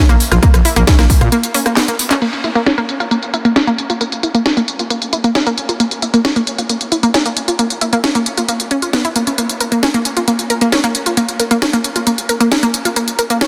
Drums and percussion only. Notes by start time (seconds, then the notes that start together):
0.09 cross-stick, closed hi-hat
0.20 open hi-hat
0.32 cross-stick, closed hi-hat
0.43 kick, closed hi-hat
0.54 cross-stick, closed hi-hat
0.65 open hi-hat
0.76 cross-stick, closed hi-hat
0.87 kick, snare, closed hi-hat
0.99 cross-stick, snare, closed hi-hat
1.10 kick, open hi-hat
1.21 cross-stick, closed hi-hat
1.32 closed hi-hat
1.43 closed hi-hat
1.54 open hi-hat
1.66 cross-stick, closed hi-hat
1.77 snare, clap, open hi-hat
1.88 closed hi-hat
1.99 open hi-hat
2.11 clap, closed hi-hat
2.22 closed hi-hat, crash
2.33 closed hi-hat
2.44 closed hi-hat
2.55 closed hi-hat
2.66 snare, closed hi-hat
2.78 closed hi-hat
2.89 closed hi-hat
3.00 closed hi-hat
3.11 closed hi-hat
3.23 closed hi-hat
3.34 closed hi-hat
3.45 closed hi-hat
3.56 snare, closed hi-hat
3.67 closed hi-hat
3.78 closed hi-hat
3.90 closed hi-hat
4.01 closed hi-hat
4.12 closed hi-hat
4.23 closed hi-hat
4.35 closed hi-hat
4.46 snare, closed hi-hat
4.57 closed hi-hat
4.68 closed hi-hat
4.79 closed hi-hat
4.90 closed hi-hat
5.02 closed hi-hat
5.13 closed hi-hat
5.24 closed hi-hat
5.35 snare, closed hi-hat
5.47 closed hi-hat
5.58 closed hi-hat
5.69 closed hi-hat
5.80 closed hi-hat
5.91 closed hi-hat
6.02 closed hi-hat
6.14 closed hi-hat
6.25 snare, closed hi-hat
6.36 closed hi-hat
6.47 closed hi-hat
6.58 closed hi-hat
6.69 closed hi-hat
6.81 closed hi-hat
6.92 closed hi-hat
7.03 closed hi-hat
7.14 snare, closed hi-hat
7.26 closed hi-hat
7.37 closed hi-hat
7.48 closed hi-hat
7.59 closed hi-hat
7.70 closed hi-hat
7.81 closed hi-hat
7.93 closed hi-hat
8.04 snare, closed hi-hat
8.15 closed hi-hat
8.26 closed hi-hat
8.38 closed hi-hat
8.49 closed hi-hat
8.60 closed hi-hat
8.71 closed hi-hat
8.82 closed hi-hat
8.93 snare, closed hi-hat
9.05 closed hi-hat
9.16 closed hi-hat
9.27 closed hi-hat
9.38 closed hi-hat
9.49 closed hi-hat
9.61 closed hi-hat
9.72 closed hi-hat
9.83 snare, closed hi-hat
9.94 closed hi-hat
10.05 closed hi-hat
10.17 closed hi-hat
10.28 closed hi-hat
10.39 closed hi-hat
10.50 closed hi-hat
10.61 closed hi-hat
10.72 snare, closed hi-hat
10.84 closed hi-hat
10.95 closed hi-hat
11.06 closed hi-hat
11.17 closed hi-hat
11.29 closed hi-hat
11.40 closed hi-hat
11.51 closed hi-hat
11.62 snare, closed hi-hat
11.73 closed hi-hat
11.84 closed hi-hat
11.96 closed hi-hat
12.07 closed hi-hat
12.18 closed hi-hat
12.29 closed hi-hat
12.41 closed hi-hat
12.52 snare, closed hi-hat
12.63 closed hi-hat
12.74 closed hi-hat
12.85 closed hi-hat
12.96 closed hi-hat
13.08 closed hi-hat
13.19 closed hi-hat
13.30 closed hi-hat
13.41 snare, closed hi-hat